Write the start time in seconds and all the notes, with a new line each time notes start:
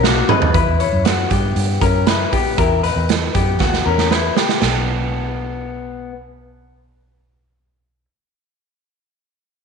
Already playing: B1
0.03 A#3 F#4, snare
0.29 D#4 B4, mid tom
0.42 floor tom
0.54 E2 E4 B4, kick, closed hi-hat
0.80 E4 C#5, closed hi-hat
0.93 F#2
1.05 B3 F#4, snare, closed hi-hat
1.30 G2 B3 G4, kick, closed hi-hat
1.56 G2, closed hi-hat
1.81 F#2 C#4 A#4, kick, closed hi-hat
2.07 E4 B4, snare, closed hi-hat
2.32 B3 G4, kick, open hi-hat
2.58 E2 E4 A#4, kick, closed hi-hat
2.83 D#4 B4, closed hi-hat
2.96 E2
3.09 snare, closed hi-hat
3.35 F#2 B3 G4, kick, closed hi-hat
3.60 D#2 B3 F#4, kick, snare
3.73 snare
3.86 E2 C#4 A#4
3.98 snare
4.11 E4 B4, snare
4.37 B3 G4, snare
4.49 snare
4.61 B1 B3, snare, china